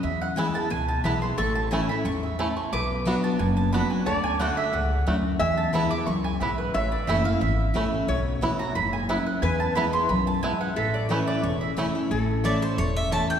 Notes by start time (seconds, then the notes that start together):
0.03 E2 E5
0.21 F#5
0.36 E3 G#3 B3 E4 G#5
0.54 B3 E4 A5
0.70 C#2 B2 G#5
0.88 A5
1.04 B1 E3 G#3 B3 E4 B5
1.22 B3 E4 C6
1.38 A1 A2 A4 C#6
1.55 A5
1.71 E3 A3 C#4 E4 G#5
1.89 C#4 E4 B5
2.05 E2 G#2 C#6
2.23 E5
2.39 A2 A3 C#4 E4 A5
2.57 C#6
2.72 B1 B2 B4 D6
3.05 F#3 B3 D4 F#4
3.24 A5
3.39 F#1 F#2 G#5
3.57 A5
3.73 F#3 B3 D4 F#4 B5
3.90 G#5
4.06 D2 D3 D5 A5
4.24 G#5
4.39 D3 A3 D4 F#4 F#5
4.57 E5
4.73 C#2 G#2 F#5
4.96 C#5
5.07 D2 F#2 A3 D4 F#4
5.39 E2 E5 G#5
5.57 A5
5.73 E3 G#3 B3 E4 B5
5.91 B3 E4 D6
6.06 C#2 F#2 C#6
6.24 G#5
6.40 B1 G#2 B3 E4 E5
6.58 B4
6.74 A1 A2 C#5 E5
6.92 D5
7.07 F#1 E3 A3 C#4 E4 E5
7.24 C#4 E4 F5
7.41 G#1 E2 E5
7.74 A1 E3 A3 C#4 E4
8.08 B1 B2 C#5
8.41 E3 B3 E4 F#4
8.59 E4 F#4 A#5
8.75 F#1 G#2 B5
8.93 G#5
9.09 F#2 B3 E4 E5
9.26 F#5
9.42 E2 B4 G#5
9.60 A5
9.75 E3 G#3 B3 E4 B5
9.93 B3 E4 C6
10.09 B1 F#2 B5
10.27 A5
10.43 G#2 B3 E4 G#5
10.61 F#5
10.76 A1 A2 A4 E5
10.94 D5
11.09 E3 A3 C#4 E4 B4
11.27 D5
11.43 E1 E2 C#5
11.61 E5
11.77 E3 A3 C#4 E4
11.95 C#4 E4
12.11 A1 A2 A4
12.44 E3 A3 C#4 E4 C#5 D5 A5
12.62 C5
12.78 E1 E2 C#5
12.97 E5
13.11 E3 A3 C#4 E4 C#5 A5
13.30 G5